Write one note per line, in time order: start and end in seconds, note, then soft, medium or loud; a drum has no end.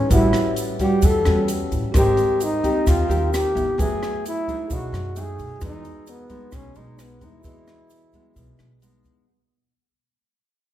0.00 0.12 C#4 medium
0.00 0.13 G#4 soft
0.00 0.09 B4 soft
0.00 0.12 C#5 soft
0.00 0.13 D#5 medium
0.09 0.32 A1 medium
0.09 1.00 A2 medium
0.09 0.76 G3 medium
0.09 0.76 C#4 medium
0.09 0.55 E4 medium
0.09 0.77 F#4 medium
0.09 1.90 B4 soft
0.09 1.91 C#5 soft
0.09 kick medium
0.09 closed hi-hat soft
0.09 shaker medium
0.14 1.92 F#5 medium
0.33 cross-stick medium
0.33 closed hi-hat soft
0.33 shaker soft
0.56 closed hi-hat soft
0.56 shaker medium
0.79 1.22 G3 soft
0.79 1.22 C#4 soft
0.79 1.23 F#4 medium
0.79 1.07 G4 medium
0.79 kick soft
0.79 closed hi-hat soft
0.79 shaker soft
1.02 1.24 E2 medium
1.02 1.93 E3 medium
1.02 1.50 A4 medium
1.02 kick medium
1.02 closed hi-hat soft
1.02 shaker medium
1.25 1.69 E2 medium
1.25 1.91 G3 medium
1.25 1.91 C#4 medium
1.25 1.91 F#4 medium
1.25 cross-stick medium
1.25 closed hi-hat soft
1.25 shaker soft
1.48 closed hi-hat soft
1.48 shaker medium
1.71 1.82 A1 medium
1.71 kick soft
1.71 closed hi-hat soft
1.71 shaker soft
1.92 2.16 G#1 medium
1.92 2.85 G#3 medium
1.92 2.41 C4 medium
1.92 3.73 G4 soft
1.92 3.74 A#4 soft
1.92 kick medium
1.92 cross-stick medium
1.92 closed hi-hat soft
1.92 shaker medium
1.96 2.41 G4 medium
1.96 2.45 G4 loud
1.96 2.41 A#4 medium
1.96 3.75 C5 soft
1.96 3.76 D#5 soft
2.17 closed hi-hat soft
2.17 shaker soft
2.40 2.90 D#4 loud
2.40 closed hi-hat soft
2.40 shaker medium
2.63 3.06 C4 medium
2.63 3.06 G4 medium
2.63 3.06 A#4 medium
2.63 kick soft
2.63 closed hi-hat soft
2.63 shaker soft
2.86 3.08 D#2 medium
2.86 3.76 D#3 soft
2.86 3.33 F4 medium
2.86 kick soft
2.86 cross-stick medium
2.86 closed hi-hat soft
2.86 shaker medium
3.09 3.52 D#2 medium
3.09 3.51 C4 medium
3.09 3.51 G4 medium
3.09 3.52 A#4 medium
3.09 closed hi-hat soft
3.09 shaker soft
3.34 3.81 G4 loud
3.34 cross-stick medium
3.34 closed hi-hat soft
3.34 shaker medium
3.55 3.66 G#1 medium
3.55 4.43 B3 medium
3.55 4.43 E4 medium
3.55 kick soft
3.55 closed hi-hat soft
3.55 shaker soft
3.78 4.00 F#1 medium
3.78 4.67 F#3 medium
3.78 4.68 A3 soft
3.78 4.25 G#4 loud
3.78 4.69 B4 soft
3.78 kick medium
3.78 closed hi-hat soft
3.78 shaker medium
3.82 4.70 E5 medium
4.03 cross-stick medium
4.03 closed hi-hat soft
4.03 shaker soft
4.26 4.75 E4 loud
4.26 closed hi-hat soft
4.26 shaker medium
4.48 5.13 A3 medium
4.48 5.13 D#4 medium
4.48 5.13 G#4 medium
4.48 kick soft
4.48 closed hi-hat soft
4.48 shaker soft
4.67 4.91 B1 medium
4.67 5.59 B2 medium
4.67 5.58 G#4 soft
4.67 kick medium
4.67 closed hi-hat soft
4.67 shaker medium
4.72 5.22 F#4 loud
4.72 5.61 C#5 soft
4.72 5.61 D#5 medium
4.92 5.35 F#2 medium
4.92 cross-stick medium
4.92 closed hi-hat soft
4.92 shaker soft
5.16 5.58 A3 medium
5.16 5.58 D#4 medium
5.16 5.59 G#4 medium
5.16 closed hi-hat soft
5.16 shaker medium
5.21 5.64 G#4 loud
5.38 5.49 B1 medium
5.38 kick soft
5.38 closed hi-hat soft
5.38 shaker soft
5.59 5.83 E2 medium
5.59 6.51 E3 medium
5.59 6.27 G#3 medium
5.59 6.27 B3 medium
5.59 6.27 D#4 medium
5.59 7.40 F#4 soft
5.59 7.41 G#4 soft
5.59 kick medium
5.59 cross-stick medium
5.59 closed hi-hat soft
5.59 shaker medium
5.63 6.11 D#4 loud
5.63 7.42 B4 soft
5.63 7.43 D#5 soft
5.85 closed hi-hat soft
5.85 shaker soft
6.07 6.57 B3 medium
6.07 closed hi-hat soft
6.07 shaker medium
6.30 6.72 G#3 medium
6.30 6.72 B3 medium
6.30 6.72 D#4 medium
6.30 kick soft
6.30 closed hi-hat soft
6.30 shaker soft
6.52 6.74 B1 medium
6.52 7.42 B2 medium
6.52 kick medium
6.52 cross-stick medium
6.52 closed hi-hat soft
6.52 shaker medium
6.56 6.80 C#4 medium
6.75 7.19 B1 medium
6.75 7.18 G#3 medium
6.75 7.18 B3 medium
6.75 7.19 D#4 medium
6.75 7.03 D#4 medium
6.75 closed hi-hat soft
6.75 shaker soft
6.99 7.27 B3 medium
6.99 cross-stick medium
6.99 closed hi-hat soft
6.99 shaker medium
7.21 7.32 E2 medium
7.21 7.41 G#3 medium
7.21 7.41 B3 medium
7.21 7.41 D#4 medium
7.21 kick soft
7.21 closed hi-hat soft
7.21 shaker soft
7.25 8.84 E4 medium
7.41 7.66 E2 medium
7.41 8.34 E3 soft
7.41 7.90 G#3 medium
7.41 9.22 F#4 soft
7.41 9.23 G#4 soft
7.41 kick medium
7.41 shaker medium
7.45 7.90 B3 soft
7.45 9.24 B4 soft
7.45 9.26 D#5 medium
7.45 closed hi-hat soft
7.67 cross-stick medium
7.67 closed hi-hat soft
7.67 shaker soft
7.90 closed hi-hat soft
7.90 shaker medium
8.13 8.79 G#3 medium
8.13 8.79 B3 medium
8.13 kick soft
8.13 closed hi-hat soft
8.13 shaker soft
8.36 8.57 B1 medium
8.36 9.26 B2 soft
8.36 kick medium
8.36 closed hi-hat soft
8.36 shaker medium
8.59 9.02 B1 medium
8.59 cross-stick medium
8.59 closed hi-hat soft
8.59 shaker soft
8.82 9.24 G#3 soft
8.82 9.24 B3 soft
8.82 9.24 D#4 medium
8.82 closed hi-hat soft
8.82 shaker medium
9.04 9.15 E2 medium
9.04 kick soft
9.04 closed hi-hat soft
9.04 shaker soft